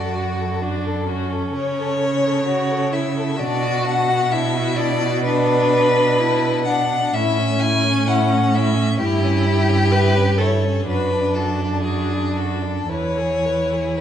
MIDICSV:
0, 0, Header, 1, 5, 480
1, 0, Start_track
1, 0, Key_signature, 3, "major"
1, 0, Tempo, 925926
1, 800, Time_signature, 4, 2, 24, 8
1, 2724, Tempo, 947867
1, 4164, Tempo, 928793
1, 5604, Tempo, 972447
1, 6084, Tempo, 1071429
1, 7047, End_track
2, 0, Start_track
2, 0, Title_t, "Violin"
2, 0, Program_c, 0, 40
2, 0, Note_on_c, 0, 74, 80
2, 559, Note_off_c, 0, 74, 0
2, 798, Note_on_c, 0, 73, 112
2, 1518, Note_on_c, 0, 76, 93
2, 1526, Note_off_c, 0, 73, 0
2, 1761, Note_on_c, 0, 74, 115
2, 1769, Note_off_c, 0, 76, 0
2, 1994, Note_on_c, 0, 78, 113
2, 2002, Note_off_c, 0, 74, 0
2, 2240, Note_on_c, 0, 76, 114
2, 2247, Note_off_c, 0, 78, 0
2, 2469, Note_on_c, 0, 74, 123
2, 2477, Note_off_c, 0, 76, 0
2, 2714, Note_off_c, 0, 74, 0
2, 2718, Note_on_c, 0, 71, 127
2, 3426, Note_off_c, 0, 71, 0
2, 3431, Note_on_c, 0, 78, 106
2, 3677, Note_on_c, 0, 76, 109
2, 3684, Note_off_c, 0, 78, 0
2, 3908, Note_on_c, 0, 80, 125
2, 3916, Note_off_c, 0, 76, 0
2, 4155, Note_on_c, 0, 78, 106
2, 4162, Note_off_c, 0, 80, 0
2, 4396, Note_on_c, 0, 76, 119
2, 4404, Note_off_c, 0, 78, 0
2, 4628, Note_off_c, 0, 76, 0
2, 4631, Note_on_c, 0, 67, 126
2, 5359, Note_on_c, 0, 73, 96
2, 5366, Note_off_c, 0, 67, 0
2, 5600, Note_off_c, 0, 73, 0
2, 5603, Note_on_c, 0, 71, 107
2, 5834, Note_on_c, 0, 69, 96
2, 5841, Note_off_c, 0, 71, 0
2, 6066, Note_off_c, 0, 69, 0
2, 6069, Note_on_c, 0, 68, 92
2, 6314, Note_on_c, 0, 69, 86
2, 6321, Note_off_c, 0, 68, 0
2, 6549, Note_on_c, 0, 73, 101
2, 6555, Note_off_c, 0, 69, 0
2, 7031, Note_on_c, 0, 71, 76
2, 7038, Note_off_c, 0, 73, 0
2, 7047, Note_off_c, 0, 71, 0
2, 7047, End_track
3, 0, Start_track
3, 0, Title_t, "Viola"
3, 0, Program_c, 1, 41
3, 0, Note_on_c, 1, 66, 70
3, 321, Note_on_c, 1, 62, 75
3, 328, Note_off_c, 1, 66, 0
3, 549, Note_on_c, 1, 61, 73
3, 556, Note_off_c, 1, 62, 0
3, 1269, Note_off_c, 1, 61, 0
3, 1272, Note_on_c, 1, 66, 83
3, 1511, Note_on_c, 1, 64, 67
3, 1519, Note_off_c, 1, 66, 0
3, 1746, Note_on_c, 1, 66, 91
3, 1754, Note_off_c, 1, 64, 0
3, 2241, Note_on_c, 1, 64, 89
3, 2249, Note_off_c, 1, 66, 0
3, 2718, Note_off_c, 1, 64, 0
3, 2722, Note_on_c, 1, 62, 91
3, 3201, Note_on_c, 1, 64, 87
3, 3209, Note_off_c, 1, 62, 0
3, 3438, Note_off_c, 1, 64, 0
3, 3441, Note_on_c, 1, 62, 69
3, 3681, Note_on_c, 1, 61, 91
3, 3688, Note_off_c, 1, 62, 0
3, 4627, Note_on_c, 1, 64, 100
3, 4635, Note_off_c, 1, 61, 0
3, 5103, Note_on_c, 1, 71, 106
3, 5111, Note_off_c, 1, 64, 0
3, 5343, Note_on_c, 1, 69, 76
3, 5351, Note_off_c, 1, 71, 0
3, 5590, Note_off_c, 1, 69, 0
3, 5593, Note_on_c, 1, 62, 77
3, 6534, Note_off_c, 1, 62, 0
3, 6552, Note_on_c, 1, 64, 67
3, 7047, Note_off_c, 1, 64, 0
3, 7047, End_track
4, 0, Start_track
4, 0, Title_t, "Violin"
4, 0, Program_c, 2, 40
4, 0, Note_on_c, 2, 69, 54
4, 78, Note_on_c, 2, 66, 50
4, 86, Note_off_c, 2, 69, 0
4, 206, Note_on_c, 2, 69, 56
4, 214, Note_off_c, 2, 66, 0
4, 322, Note_off_c, 2, 69, 0
4, 325, Note_on_c, 2, 66, 55
4, 441, Note_on_c, 2, 69, 61
4, 449, Note_off_c, 2, 66, 0
4, 563, Note_on_c, 2, 66, 61
4, 570, Note_off_c, 2, 69, 0
4, 685, Note_on_c, 2, 69, 59
4, 693, Note_off_c, 2, 66, 0
4, 803, Note_off_c, 2, 69, 0
4, 807, Note_on_c, 2, 73, 66
4, 931, Note_on_c, 2, 69, 58
4, 938, Note_off_c, 2, 73, 0
4, 1057, Note_on_c, 2, 73, 59
4, 1065, Note_off_c, 2, 69, 0
4, 1172, Note_on_c, 2, 69, 56
4, 1180, Note_off_c, 2, 73, 0
4, 1279, Note_off_c, 2, 69, 0
4, 1282, Note_on_c, 2, 73, 70
4, 1408, Note_on_c, 2, 69, 64
4, 1416, Note_off_c, 2, 73, 0
4, 1527, Note_on_c, 2, 73, 62
4, 1535, Note_off_c, 2, 69, 0
4, 1642, Note_on_c, 2, 69, 60
4, 1649, Note_off_c, 2, 73, 0
4, 1751, Note_off_c, 2, 69, 0
4, 1754, Note_on_c, 2, 62, 75
4, 1882, Note_on_c, 2, 66, 70
4, 1890, Note_off_c, 2, 62, 0
4, 1996, Note_on_c, 2, 62, 63
4, 2003, Note_off_c, 2, 66, 0
4, 2122, Note_on_c, 2, 66, 72
4, 2129, Note_off_c, 2, 62, 0
4, 2238, Note_off_c, 2, 66, 0
4, 2241, Note_on_c, 2, 62, 63
4, 2357, Note_on_c, 2, 66, 67
4, 2365, Note_off_c, 2, 62, 0
4, 2476, Note_on_c, 2, 62, 75
4, 2484, Note_off_c, 2, 66, 0
4, 2597, Note_on_c, 2, 66, 67
4, 2605, Note_off_c, 2, 62, 0
4, 2712, Note_off_c, 2, 66, 0
4, 2715, Note_on_c, 2, 62, 77
4, 2835, Note_off_c, 2, 62, 0
4, 2835, Note_on_c, 2, 62, 72
4, 2959, Note_off_c, 2, 62, 0
4, 2959, Note_on_c, 2, 62, 67
4, 3078, Note_off_c, 2, 62, 0
4, 3078, Note_on_c, 2, 62, 62
4, 3192, Note_off_c, 2, 62, 0
4, 3195, Note_on_c, 2, 62, 77
4, 3320, Note_off_c, 2, 62, 0
4, 3320, Note_on_c, 2, 62, 70
4, 3436, Note_off_c, 2, 62, 0
4, 3436, Note_on_c, 2, 62, 73
4, 3557, Note_off_c, 2, 62, 0
4, 3557, Note_on_c, 2, 62, 64
4, 3681, Note_off_c, 2, 62, 0
4, 3688, Note_on_c, 2, 64, 80
4, 3799, Note_on_c, 2, 61, 70
4, 3806, Note_off_c, 2, 64, 0
4, 3922, Note_on_c, 2, 64, 72
4, 3929, Note_off_c, 2, 61, 0
4, 4035, Note_on_c, 2, 61, 79
4, 4042, Note_off_c, 2, 64, 0
4, 4152, Note_off_c, 2, 61, 0
4, 4155, Note_on_c, 2, 64, 74
4, 4283, Note_on_c, 2, 61, 70
4, 4291, Note_off_c, 2, 64, 0
4, 4399, Note_on_c, 2, 64, 77
4, 4407, Note_off_c, 2, 61, 0
4, 4502, Note_on_c, 2, 61, 70
4, 4509, Note_off_c, 2, 64, 0
4, 4623, Note_off_c, 2, 61, 0
4, 4626, Note_on_c, 2, 64, 74
4, 4752, Note_on_c, 2, 61, 72
4, 4760, Note_off_c, 2, 64, 0
4, 4865, Note_on_c, 2, 64, 70
4, 4873, Note_off_c, 2, 61, 0
4, 4985, Note_on_c, 2, 61, 58
4, 4992, Note_off_c, 2, 64, 0
4, 5106, Note_off_c, 2, 61, 0
4, 5109, Note_on_c, 2, 64, 70
4, 5230, Note_on_c, 2, 61, 61
4, 5238, Note_off_c, 2, 64, 0
4, 5356, Note_on_c, 2, 64, 56
4, 5364, Note_off_c, 2, 61, 0
4, 5479, Note_on_c, 2, 61, 62
4, 5487, Note_off_c, 2, 64, 0
4, 5597, Note_off_c, 2, 61, 0
4, 5601, Note_on_c, 2, 66, 66
4, 5719, Note_on_c, 2, 62, 60
4, 5727, Note_off_c, 2, 66, 0
4, 5837, Note_on_c, 2, 66, 53
4, 5844, Note_off_c, 2, 62, 0
4, 5964, Note_on_c, 2, 62, 57
4, 5971, Note_off_c, 2, 66, 0
4, 6077, Note_off_c, 2, 62, 0
4, 6079, Note_on_c, 2, 66, 57
4, 6206, Note_on_c, 2, 62, 61
4, 6212, Note_off_c, 2, 66, 0
4, 6314, Note_on_c, 2, 66, 68
4, 6321, Note_off_c, 2, 62, 0
4, 6429, Note_on_c, 2, 62, 57
4, 6435, Note_off_c, 2, 66, 0
4, 6551, Note_off_c, 2, 62, 0
4, 6554, Note_on_c, 2, 71, 58
4, 6676, Note_on_c, 2, 68, 53
4, 6682, Note_off_c, 2, 71, 0
4, 6800, Note_on_c, 2, 71, 54
4, 6807, Note_off_c, 2, 68, 0
4, 6921, Note_on_c, 2, 68, 50
4, 6928, Note_off_c, 2, 71, 0
4, 7037, Note_off_c, 2, 68, 0
4, 7047, End_track
5, 0, Start_track
5, 0, Title_t, "Cello"
5, 0, Program_c, 3, 42
5, 0, Note_on_c, 3, 42, 74
5, 783, Note_off_c, 3, 42, 0
5, 797, Note_on_c, 3, 49, 75
5, 1757, Note_on_c, 3, 47, 93
5, 1765, Note_off_c, 3, 49, 0
5, 3679, Note_off_c, 3, 47, 0
5, 3682, Note_on_c, 3, 45, 85
5, 4623, Note_on_c, 3, 43, 87
5, 4631, Note_off_c, 3, 45, 0
5, 5594, Note_off_c, 3, 43, 0
5, 5597, Note_on_c, 3, 42, 76
5, 6536, Note_off_c, 3, 42, 0
5, 6549, Note_on_c, 3, 40, 64
5, 7047, Note_off_c, 3, 40, 0
5, 7047, End_track
0, 0, End_of_file